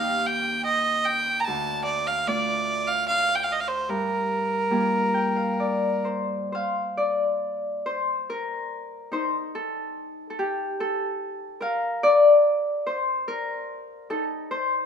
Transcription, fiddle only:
0, 0, Header, 1, 2, 480
1, 0, Start_track
1, 0, Key_signature, -2, "minor"
1, 0, Tempo, 811908
1, 875, Time_signature, 3, 2, 24, 8
1, 2794, Tempo, 899550
1, 3754, Tempo, 873362
1, 4714, Tempo, 833333
1, 8508, End_track
2, 0, Start_track
2, 0, Title_t, "Fiddle"
2, 0, Program_c, 0, 110
2, 0, Note_on_c, 0, 77, 72
2, 156, Note_on_c, 0, 79, 76
2, 165, Note_off_c, 0, 77, 0
2, 381, Note_off_c, 0, 79, 0
2, 384, Note_on_c, 0, 75, 80
2, 620, Note_on_c, 0, 79, 90
2, 629, Note_off_c, 0, 75, 0
2, 827, Note_on_c, 0, 82, 66
2, 836, Note_off_c, 0, 79, 0
2, 855, Note_on_c, 0, 81, 84
2, 864, Note_off_c, 0, 82, 0
2, 1084, Note_off_c, 0, 81, 0
2, 1088, Note_on_c, 0, 74, 85
2, 1221, Note_on_c, 0, 77, 81
2, 1230, Note_off_c, 0, 74, 0
2, 1346, Note_on_c, 0, 74, 84
2, 1355, Note_off_c, 0, 77, 0
2, 1698, Note_on_c, 0, 77, 84
2, 1707, Note_off_c, 0, 74, 0
2, 1815, Note_off_c, 0, 77, 0
2, 1819, Note_on_c, 0, 77, 91
2, 1981, Note_on_c, 0, 79, 68
2, 1990, Note_off_c, 0, 77, 0
2, 2030, Note_on_c, 0, 77, 75
2, 2038, Note_off_c, 0, 79, 0
2, 2083, Note_on_c, 0, 75, 69
2, 2092, Note_off_c, 0, 77, 0
2, 2130, Note_on_c, 0, 77, 68
2, 2138, Note_off_c, 0, 75, 0
2, 2174, Note_on_c, 0, 72, 67
2, 2183, Note_off_c, 0, 77, 0
2, 2302, Note_on_c, 0, 70, 66
2, 2311, Note_off_c, 0, 72, 0
2, 3510, Note_off_c, 0, 70, 0
2, 8508, End_track
0, 0, End_of_file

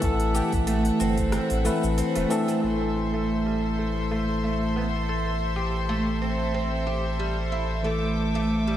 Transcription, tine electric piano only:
0, 0, Header, 1, 2, 480
1, 0, Start_track
1, 0, Tempo, 652174
1, 17, Time_signature, 4, 2, 24, 8
1, 6454, End_track
2, 0, Start_track
2, 0, Title_t, "Tine electric piano"
2, 0, Program_c, 0, 4
2, 0, Control_c, 0, 64, 127
2, 0, Note_on_c, 0, 52, 79
2, 0, Note_on_c, 0, 57, 76
2, 0, Note_on_c, 0, 69, 97
2, 2, Note_off_c, 0, 52, 0
2, 2, Note_on_c, 0, 52, 95
2, 11, Note_off_c, 0, 57, 0
2, 11, Note_on_c, 0, 57, 93
2, 32, Note_off_c, 0, 69, 0
2, 32, Note_on_c, 0, 69, 118
2, 1188, Note_off_c, 0, 52, 0
2, 1192, Note_off_c, 0, 57, 0
2, 1202, Note_off_c, 0, 69, 0
2, 1211, Note_on_c, 0, 52, 90
2, 1215, Note_on_c, 0, 57, 90
2, 1220, Note_on_c, 0, 60, 81
2, 1226, Note_on_c, 0, 71, 99
2, 1668, Note_off_c, 0, 52, 0
2, 1670, Note_off_c, 0, 57, 0
2, 1672, Note_off_c, 0, 60, 0
2, 1675, Note_off_c, 0, 71, 0
2, 1688, Note_on_c, 0, 52, 101
2, 1694, Note_on_c, 0, 57, 93
2, 1699, Note_on_c, 0, 60, 96
2, 1704, Note_on_c, 0, 69, 116
2, 1820, Note_off_c, 0, 52, 0
2, 1823, Note_off_c, 0, 57, 0
2, 1826, Note_off_c, 0, 60, 0
2, 1828, Note_off_c, 0, 69, 0
2, 1924, Note_on_c, 0, 52, 67
2, 1934, Note_on_c, 0, 57, 60
2, 1945, Control_c, 0, 64, 0
2, 1953, Note_on_c, 0, 69, 67
2, 2072, Control_c, 0, 64, 127
2, 5744, Note_off_c, 0, 52, 0
2, 5749, Note_off_c, 0, 57, 0
2, 5759, Note_off_c, 0, 69, 0
2, 5760, Note_on_c, 0, 52, 68
2, 5770, Note_on_c, 0, 57, 67
2, 5791, Note_on_c, 0, 69, 74
2, 6454, Note_off_c, 0, 52, 0
2, 6454, Note_off_c, 0, 57, 0
2, 6454, Note_off_c, 0, 69, 0
2, 6454, End_track
0, 0, End_of_file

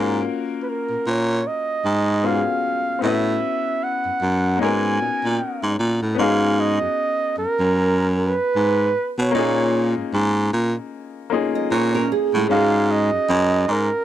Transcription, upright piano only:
0, 0, Header, 1, 2, 480
1, 0, Start_track
1, 0, Tempo, 789474
1, 1837, Time_signature, 4, 2, 24, 8
1, 8539, End_track
2, 0, Start_track
2, 0, Title_t, "Upright piano"
2, 0, Program_c, 0, 0
2, 0, Note_on_c, 0, 58, 72
2, 0, Note_on_c, 0, 61, 62
2, 0, Note_on_c, 0, 65, 66
2, 0, Note_on_c, 0, 66, 58
2, 0, Note_on_c, 0, 70, 78
2, 20, Control_c, 0, 64, 127
2, 1326, Note_off_c, 0, 58, 0
2, 1332, Note_off_c, 0, 61, 0
2, 1337, Note_off_c, 0, 65, 0
2, 1343, Note_off_c, 0, 66, 0
2, 1349, Note_off_c, 0, 70, 0
2, 1355, Note_on_c, 0, 59, 41
2, 1360, Note_on_c, 0, 61, 41
2, 1364, Note_on_c, 0, 65, 41
2, 1368, Note_on_c, 0, 66, 45
2, 1374, Note_on_c, 0, 68, 49
2, 1817, Note_on_c, 0, 60, 42
2, 1820, Note_off_c, 0, 59, 0
2, 1829, Note_on_c, 0, 59, 53
2, 1838, Note_off_c, 0, 61, 0
2, 1840, Note_off_c, 0, 65, 0
2, 1842, Note_off_c, 0, 66, 0
2, 1844, Control_c, 0, 64, 0
2, 1845, Note_off_c, 0, 68, 0
2, 1845, Note_on_c, 0, 64, 51
2, 1855, Note_on_c, 0, 66, 50
2, 1860, Note_on_c, 0, 61, 57
2, 1866, Note_on_c, 0, 71, 65
2, 1873, Note_off_c, 0, 60, 0
2, 1970, Control_c, 0, 64, 127
2, 2774, Note_off_c, 0, 59, 0
2, 2777, Note_on_c, 0, 58, 49
2, 2782, Note_off_c, 0, 61, 0
2, 2782, Note_off_c, 0, 64, 0
2, 2787, Note_off_c, 0, 66, 0
2, 2791, Note_on_c, 0, 61, 53
2, 2792, Note_off_c, 0, 71, 0
2, 2798, Note_on_c, 0, 63, 57
2, 2803, Control_c, 0, 64, 0
2, 2813, Note_on_c, 0, 66, 57
2, 2816, Note_on_c, 0, 59, 59
2, 2823, Note_on_c, 0, 70, 69
2, 2833, Note_off_c, 0, 58, 0
2, 2908, Control_c, 0, 64, 127
2, 3729, Note_off_c, 0, 59, 0
2, 3734, Note_off_c, 0, 61, 0
2, 3738, Note_off_c, 0, 63, 0
2, 3738, Note_on_c, 0, 59, 56
2, 3746, Note_off_c, 0, 66, 0
2, 3749, Note_on_c, 0, 61, 50
2, 3751, Note_off_c, 0, 70, 0
2, 3762, Note_on_c, 0, 63, 53
2, 3765, Control_c, 0, 64, 0
2, 3769, Note_on_c, 0, 66, 48
2, 3785, Note_on_c, 0, 68, 63
2, 3888, Control_c, 0, 64, 127
2, 5643, Note_off_c, 0, 59, 0
2, 5648, Note_off_c, 0, 61, 0
2, 5655, Note_off_c, 0, 63, 0
2, 5658, Note_off_c, 0, 66, 0
2, 5661, Note_on_c, 0, 58, 59
2, 5666, Note_off_c, 0, 68, 0
2, 5670, Note_on_c, 0, 61, 56
2, 5682, Note_on_c, 0, 63, 54
2, 5685, Control_c, 0, 64, 0
2, 5695, Note_on_c, 0, 65, 52
2, 5706, Note_on_c, 0, 68, 64
2, 5789, Control_c, 0, 64, 127
2, 6844, Note_off_c, 0, 58, 0
2, 6849, Note_off_c, 0, 61, 0
2, 6856, Note_off_c, 0, 63, 0
2, 6862, Note_off_c, 0, 65, 0
2, 6867, Note_off_c, 0, 68, 0
2, 6869, Note_on_c, 0, 58, 57
2, 6876, Note_on_c, 0, 61, 52
2, 6883, Note_on_c, 0, 63, 55
2, 6886, Note_on_c, 0, 65, 54
2, 6893, Note_on_c, 0, 68, 63
2, 7583, Note_on_c, 0, 56, 59
2, 7586, Note_off_c, 0, 61, 0
2, 7593, Note_off_c, 0, 58, 0
2, 7596, Note_on_c, 0, 61, 54
2, 7598, Note_off_c, 0, 63, 0
2, 7601, Note_off_c, 0, 65, 0
2, 7605, Note_off_c, 0, 68, 0
2, 7605, Control_c, 0, 64, 0
2, 7607, Note_on_c, 0, 63, 54
2, 7614, Note_on_c, 0, 66, 58
2, 7629, Note_on_c, 0, 68, 64
2, 7693, Control_c, 0, 64, 127
2, 8539, Note_off_c, 0, 56, 0
2, 8539, Note_off_c, 0, 61, 0
2, 8539, Note_off_c, 0, 63, 0
2, 8539, Note_off_c, 0, 66, 0
2, 8539, Note_off_c, 0, 68, 0
2, 8539, End_track
0, 0, End_of_file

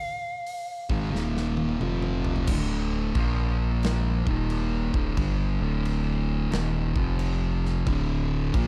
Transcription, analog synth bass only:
0, 0, Header, 1, 2, 480
1, 0, Start_track
1, 0, Key_signature, -1, "minor"
1, 0, Tempo, 673401
1, 1770, Time_signature, 4, 2, 24, 8
1, 6182, End_track
2, 0, Start_track
2, 0, Title_t, "Analog synth bass"
2, 0, Program_c, 0, 38
2, 636, Note_on_c, 0, 32, 98
2, 795, Note_off_c, 0, 32, 0
2, 807, Note_on_c, 0, 27, 102
2, 1260, Note_off_c, 0, 27, 0
2, 1284, Note_on_c, 0, 29, 98
2, 1738, Note_off_c, 0, 29, 0
2, 1766, Note_on_c, 0, 26, 89
2, 2219, Note_off_c, 0, 26, 0
2, 2244, Note_on_c, 0, 34, 87
2, 3011, Note_off_c, 0, 34, 0
2, 3043, Note_on_c, 0, 27, 94
2, 3493, Note_off_c, 0, 27, 0
2, 3525, Note_on_c, 0, 26, 96
2, 3679, Note_off_c, 0, 26, 0
2, 3687, Note_on_c, 0, 31, 85
2, 3978, Note_off_c, 0, 31, 0
2, 3992, Note_on_c, 0, 26, 112
2, 4615, Note_off_c, 0, 26, 0
2, 4645, Note_on_c, 0, 27, 102
2, 4937, Note_off_c, 0, 27, 0
2, 4959, Note_on_c, 0, 29, 85
2, 5579, Note_off_c, 0, 29, 0
2, 5607, Note_on_c, 0, 26, 91
2, 6059, Note_off_c, 0, 26, 0
2, 6085, Note_on_c, 0, 34, 103
2, 6182, Note_off_c, 0, 34, 0
2, 6182, End_track
0, 0, End_of_file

